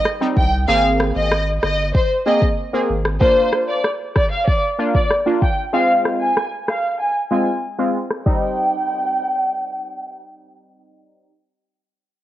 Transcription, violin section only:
0, 0, Header, 1, 2, 480
1, 0, Start_track
1, 0, Key_signature, -3, "minor"
1, 0, Tempo, 631579
1, 520, Time_signature, 4, 2, 24, 8
1, 9300, End_track
2, 0, Start_track
2, 0, Title_t, "Violin section"
2, 0, Program_c, 0, 48
2, 279, Note_on_c, 0, 79, 72
2, 373, Note_off_c, 0, 79, 0
2, 520, Note_on_c, 0, 77, 107
2, 614, Note_off_c, 0, 77, 0
2, 880, Note_on_c, 0, 75, 73
2, 1068, Note_off_c, 0, 75, 0
2, 1240, Note_on_c, 0, 75, 80
2, 1428, Note_off_c, 0, 75, 0
2, 1481, Note_on_c, 0, 72, 77
2, 1574, Note_off_c, 0, 72, 0
2, 1721, Note_on_c, 0, 75, 77
2, 1814, Note_off_c, 0, 75, 0
2, 2440, Note_on_c, 0, 72, 98
2, 2628, Note_off_c, 0, 72, 0
2, 2800, Note_on_c, 0, 74, 75
2, 2894, Note_off_c, 0, 74, 0
2, 3160, Note_on_c, 0, 74, 78
2, 3254, Note_off_c, 0, 74, 0
2, 3279, Note_on_c, 0, 77, 79
2, 3373, Note_off_c, 0, 77, 0
2, 3399, Note_on_c, 0, 74, 84
2, 3493, Note_off_c, 0, 74, 0
2, 3760, Note_on_c, 0, 74, 79
2, 3854, Note_off_c, 0, 74, 0
2, 4120, Note_on_c, 0, 79, 73
2, 4214, Note_off_c, 0, 79, 0
2, 4359, Note_on_c, 0, 77, 109
2, 4453, Note_off_c, 0, 77, 0
2, 4720, Note_on_c, 0, 80, 73
2, 4908, Note_off_c, 0, 80, 0
2, 5080, Note_on_c, 0, 77, 79
2, 5268, Note_off_c, 0, 77, 0
2, 5321, Note_on_c, 0, 80, 75
2, 5414, Note_off_c, 0, 80, 0
2, 5561, Note_on_c, 0, 80, 75
2, 5654, Note_off_c, 0, 80, 0
2, 6279, Note_on_c, 0, 79, 91
2, 7689, Note_off_c, 0, 79, 0
2, 9300, End_track
0, 0, End_of_file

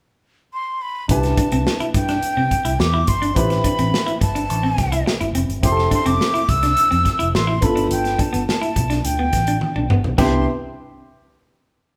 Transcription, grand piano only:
0, 0, Header, 1, 2, 480
1, 0, Start_track
1, 0, Key_signature, 0, "major"
1, 0, Tempo, 568182
1, 919, Time_signature, 4, 2, 24, 8
1, 10110, End_track
2, 0, Start_track
2, 0, Title_t, "Grand piano"
2, 0, Program_c, 0, 0
2, 914, Note_on_c, 0, 62, 58
2, 921, Note_on_c, 0, 64, 53
2, 930, Note_on_c, 0, 67, 55
2, 937, Note_on_c, 0, 71, 65
2, 1063, Control_c, 0, 64, 127
2, 2803, Note_off_c, 0, 62, 0
2, 2806, Note_off_c, 0, 64, 0
2, 2811, Note_off_c, 0, 67, 0
2, 2815, Note_off_c, 0, 71, 0
2, 2828, Note_on_c, 0, 60, 62
2, 2835, Note_on_c, 0, 64, 56
2, 2841, Note_on_c, 0, 67, 55
2, 2849, Note_on_c, 0, 71, 66
2, 2850, Control_c, 0, 64, 0
2, 3021, Control_c, 0, 64, 127
2, 4721, Note_off_c, 0, 60, 0
2, 4725, Note_off_c, 0, 64, 0
2, 4728, Note_off_c, 0, 67, 0
2, 4731, Note_off_c, 0, 71, 0
2, 4753, Note_on_c, 0, 60, 62
2, 4758, Note_on_c, 0, 64, 59
2, 4766, Note_on_c, 0, 67, 56
2, 4772, Control_c, 0, 64, 0
2, 4772, Note_on_c, 0, 68, 54
2, 4822, Note_off_c, 0, 68, 0
2, 4830, Note_on_c, 0, 69, 71
2, 4928, Control_c, 0, 64, 127
2, 6404, Note_off_c, 0, 60, 0
2, 6407, Note_off_c, 0, 64, 0
2, 6411, Note_off_c, 0, 67, 0
2, 6430, Note_on_c, 0, 59, 55
2, 6435, Note_on_c, 0, 62, 46
2, 6437, Note_off_c, 0, 69, 0
2, 6442, Note_on_c, 0, 65, 47
2, 6449, Note_on_c, 0, 69, 67
2, 6453, Control_c, 0, 64, 0
2, 6593, Control_c, 0, 64, 127
2, 8322, Note_off_c, 0, 59, 0
2, 8324, Note_off_c, 0, 62, 0
2, 8328, Note_off_c, 0, 65, 0
2, 8331, Note_off_c, 0, 69, 0
2, 8599, Note_on_c, 0, 59, 73
2, 8599, Note_on_c, 0, 62, 70
2, 8600, Note_on_c, 0, 67, 86
2, 8601, Note_on_c, 0, 64, 69
2, 8613, Control_c, 0, 64, 0
2, 8823, Note_off_c, 0, 59, 0
2, 8823, Note_off_c, 0, 62, 0
2, 8824, Note_off_c, 0, 64, 0
2, 8824, Note_off_c, 0, 67, 0
2, 10110, End_track
0, 0, End_of_file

